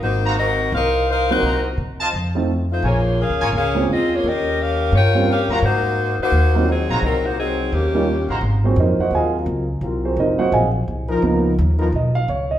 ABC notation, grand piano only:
X:1
M:4/4
L:1/8
Q:"Swing" 1/4=172
K:Abmix
V:1 name="Grand piano"
z6 z [G,B,CEG] | z4 z [F,=A,CEF] z2 | z4 z [A,B,CDF] z2 | z4 z [=G,B,CDF] z2 |
z4 z [G,B,CEF] z2 | z4 z [=G,B,DEF] z2 | z [GAc] [EBce] [Gceg] [Aefa] z3 | z [CGAc] [EBce] [Gceg] [Aefa] z3 |
z4 e f d e |]
V:2 name="Grand piano"
z8 | z8 | z8 | z8 |
z8 | z8 | z [G,B,CF]3 z4 | z3 [G,B,CF] z4 |
[F,B,_CE] z6 z |]